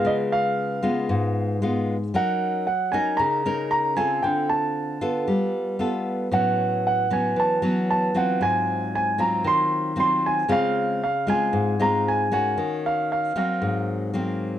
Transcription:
<<
  \new Staff \with { instrumentName = "Grand piano" } { \time 4/4 \key des \major \tempo 4 = 115 ees''8 f''4. r2 | ges''4 ges''8 aes''8 bes''4 bes''8 aes''8 | g''8 a''4. r2 | fis''4 fis''8 aes''8 a''4 a''8 fis''8 |
aes''4 aes''8 bes''8 c'''4 c'''8 aes''8 | f''4 f''8 aes''4 bes''8 aes''8 aes''8~ | aes''8 f''8 f''8 f''2 r8 | }
  \new Staff \with { instrumentName = "Nylon-string guitar" } { \time 4/4 \key des \major << { <aes ces' f'>4. <aes ces' f'>4. <aes ces' f'>8 r8 | <des' ees' bes'>4 r8 <des' ees' bes'>4 <des' ees' bes'>4 <c' f' a'>8~ | <c' f' a'>4. <ces' f' a'>4. <b f' a'>4 | <fis b cis'>4. <fis b cis'>4 <fis b cis'>4 <fis c' f'>8~ |
<fis c' f'>4. <ges c' f'>4. <ges c' f'>4 | <aes c' f'>4 r8 <aes c' f'>4 <aes c' f'>4 <bes des' ges'>8~ | <bes des' ges'>4. <ges bes c'>4. <ges bes c'>4 | } \\ { des2 aes,2 | ges2 des2 | d2 g2 | a,2 e2 |
aes,2 ees2 | des2 aes,2 | ees2 aes,2 | } >> }
>>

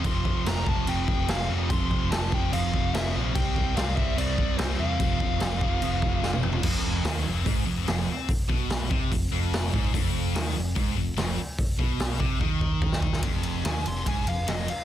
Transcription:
<<
  \new Staff \with { instrumentName = "Lead electric guitar" } { \time 4/4 \key c \mixolydian \tempo 4 = 146 c'''4 bes''8 a''8 g''4 f''8 r8 | c'''4 a''8 g''8 f''4 e''8 r8 | g''4 f''8 e''8 d''4 c''8 f''8~ | f''2.~ f''8 r8 |
\key c \dorian r1 | r1 | r1 | r1 |
r4 aes''8 c'''8 aes''8 f''8 ees''8 f''8 | }
  \new Staff \with { instrumentName = "Distorted electric guitar" } { \clef bass \time 4/4 \key c \mixolydian <f, c f>4 <f, c f>8 <f, c f>8 <f, c f>4 <f, c f>8 <f, c f>8 | <f, c f>4 <f, c f>8 <f, c f>8 <f, c f>4 <f, c f>8 <f, c f>8 | <c g c'>4 <c g c'>8 <c g c'>8 <c g c'>4 <c g c'>8 <c g c'>8 | <f, c f>4 <f, c f>8 <f, c f>8 <f, c f>4 <f, c f>8 <f, c f>8 |
\key c \dorian f,4 ees8 f,8 aes,8 f,8 f,8 r8 | r8 b,4 c8 f,8 f,4 aes,8 | f,4 ees8 f,8 aes,8 f,8 f,8 r8 | r8 b,4 c8 ees2 |
f,4 ees8 f,8 aes,8 f,8 f,8 r8 | }
  \new Staff \with { instrumentName = "Overdriven electric guitar" } { \clef bass \time 4/4 \key c \mixolydian <f, c f>4 <f, c f>8 <f, c f>8 <f, c f>4 <f, c f>8 <f, c f>8 | <f, c f>4 <f, c f>8 <f, c f>8 <f, c f>4 <f, c f>8 <f, c f>8 | <c g c'>4 <c g c'>8 <c g c'>8 <c g c'>4 <c g c'>8 <c g c'>8 | <f, c f>4 <f, c f>8 <f, c f>8 <f, c f>4 <f, c f>8 <f, c f>8 |
\key c \dorian f,4 ees8 f,8 aes,8 f,8 f,8 r8 | r8 b,4 c8 f,8 f,4 aes,8 | f,4 ees8 f,8 aes,8 f,8 f,8 r8 | r8 b,4 c8 ees2 |
f,4 ees8 f,8 aes,8 f,8 f,8 r8 | }
  \new Staff \with { instrumentName = "Overdriven electric guitar" } { \clef bass \time 4/4 \key c \mixolydian <f, c f>4 <f, c f>8 <f, c f>8 <f, c f>4 <f, c f>8 <f, c f>8 | <f, c f>4 <f, c f>8 <f, c f>8 <f, c f>4 <f, c f>8 <f, c f>8 | <c g c'>4 <c g c'>8 <c g c'>8 <c g c'>4 <c g c'>8 <c g c'>8 | <f, c f>4 <f, c f>8 <f, c f>8 <f, c f>4 <f, c f>8 <f, c f>8 |
\key c \dorian f,4 ees8 f,8 aes,8 f,8 f,8 r8 | r8 b,4 c8 f,8 f,4 aes,8 | f,4 ees8 f,8 aes,8 f,8 f,8 r8 | r8 b,4 c8 ees2 |
r1 | }
  \new Staff \with { instrumentName = "Picked electric bass" } { \clef bass \time 4/4 \key c \mixolydian f,,8 f,,8 f,,4 f,,8 f,,8 f,,8 f,,8 | f,,4 f,,4 f,,8 f,,8 f,,8 bes,,8 | c,8 c,8 c,4 c,8 c,8 c,8 e,8 | f,,4 f,,4 f,,8 f,,8 f,,8 f,,8 |
\key c \dorian f,,4 ees,8 f,,8 aes,,8 f,,8 f,,8 r8 | r8 b,,4 c,8 f,,8 f,,4 aes,,8 | f,,4 ees,8 f,,8 aes,,8 f,,8 f,,8 r8 | r8 b,,4 c,8 ees,2 |
f,,4 ees,8 f,,8 aes,,8 f,,8 f,,8 r8 | }
  \new DrumStaff \with { instrumentName = "Drums" } \drummode { \time 4/4 <cymc bd>8 bd8 <cymc sn>8 bd8 cymc8 bd8 <cymc sn>4 | <cymc bd>8 bd8 <cymc sn>8 bd8 cymc8 bd8 <cymc sn>4 | <cymc bd>8 bd8 <cymc sn>8 bd8 cymc8 bd8 <cymc sn>4 | <cymc bd>8 bd8 <cymc sn>8 bd8 cymc8 bd8 sn16 tommh16 toml16 tomfh16 |
<cymc bd>4 <hho sn>4 <hho bd>4 <hho sn>4 | <hho bd>8 bd8 <hho sn>8 bd8 <hho bd>4 <hho sn>8 bd8 | <hho bd>4 <hho sn>4 <hho bd>4 <hho sn>4 | <hho bd>8 bd8 <hho sn>8 bd8 bd8 bd8 bd16 sn16 bd16 sn16 |
<bd cymr>8 cymr8 <cymr sn>8 cymr8 <bd cymr>8 cymr8 <cymr sn>8 cymr8 | }
>>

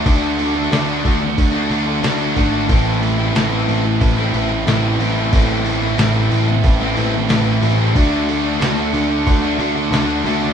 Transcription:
<<
  \new Staff \with { instrumentName = "Distorted electric guitar" } { \time 4/4 \key a \dorian \tempo 4 = 91 <d a d' fis'>8. <a d' fis'>16 <d a d' fis'>16 <a d' fis'>4 <a d' fis'>16 <d a d' fis'>8 <d a d' fis'>8 <d a d' fis'>16 <a d' fis'>16 | <a, e a c' e'>8. <a c' e'>16 <a, e a c' e'>16 <a c' e'>4 <a c' e'>16 <e a c' e'>8 <a, e a c' e'>8 <e a c' e'>16 <a c' e'>16 | <a, e a c' e'>8. <a c' e'>16 <a, e a c' e'>16 <a c' e'>4 <a c' e'>16 <e a c' e'>8 <a, e a c' e'>8 <e a c' e'>16 <a c' e'>16 | <d a d' fis'>8. <a d' fis'>16 <d a d' fis'>16 <a d' fis'>4 <a d' fis'>16 <d a d' fis'>8 <d a d' fis'>8 <d a d' fis'>16 <a d' fis'>16 | }
  \new Staff \with { instrumentName = "Distorted electric guitar" } { \time 4/4 \key a \dorian <d a d' fis'>8 <d a d' fis'>16 <a d' fis'>16 <d a d' fis'>16 <a d' fis'>16 <d a d' fis'>8. <a d' fis'>16 <d a d' fis'>16 <a d' fis'>16 <d a d' fis'>8 <d a d' fis'>16 <a d' fis'>16 | <a, e a c' e'>8 <e a c' e'>16 <a c' e'>16 <a, e a c' e'>16 <a c' e'>16 <e a c' e'>8. <a c' e'>16 <e a c' e'>16 <a c' e'>16 <a, e a c' e'>8 <e a c' e'>16 <a c' e'>16 | <a, e a c' e'>8 <e a c' e'>16 <a c' e'>16 <a, e a c' e'>16 <a c' e'>16 <e a c' e'>8. <a c' e'>16 <e a c' e'>16 <a c' e'>16 <a, e a c' e'>8 <e a c' e'>16 <a c' e'>16 | <d a d' fis'>8 <d a d' fis'>16 <a d' fis'>16 <d a d' fis'>16 <a d' fis'>16 <d a d' fis'>8. <a d' fis'>16 <d a d' fis'>16 <a d' fis'>16 <d a d' fis'>8 <d a d' fis'>16 <a d' fis'>16 | }
  \new Staff \with { instrumentName = "Distorted electric guitar" } { \clef bass \time 4/4 \key a \dorian <d a d'>4 <d a d'>8 <d a d'>8 <d a d'>4 <d a d'>8 <d a d'>8 | <a, e a>4 <a, e a>8 <a, e a>8 <a, e a>4 <a, e a>8 <a, e a>8 | <a, e a>4 <a, e a>8 <a, e a>8 <a, e a>4 <a, e a>8 <a, e a>8 | <d a d'>4 <d a d'>8 <d a d'>8 <d a d'>4 <d a d'>8 <d a d'>8 | }
  \new Staff \with { instrumentName = "Picked electric bass" } { \clef bass \time 4/4 \key a \dorian d,4 d,8 d,8 d,8 d,8 d,8 gis,,8 | a,,4 a,,8 a,,8 a,,8 a,,8 a,,8 a,,8 | a,,4 a,,8 a,,8 a,,8 a,,8 a,,8 a,,8 | d,4 d,8 d,8 d,8 d,8 d,8 d,8 | }
  \new DrumStaff \with { instrumentName = "Drums" } \drummode { \time 4/4 <cymc bd>8 cymc8 <cymc sn>8 <cymc bd>8 <cymc bd>8 cymc8 <cymc sn>8 <cymc bd sn>8 | <cymc bd>8 cymc8 <cymc sn>8 cymc8 <cymc bd>8 cymc8 <cymc sn>8 cymc8 | <cymc bd>8 cymc8 <cymc sn>8 cymc8 <cymc bd>8 cymc8 <cymc sn>8 cymc8 | <cymc bd>8 cymc8 <cymc sn>8 cymc8 <cymc bd>8 cymc8 <cymc sn>8 <cymc sn>16 sn16 | }
>>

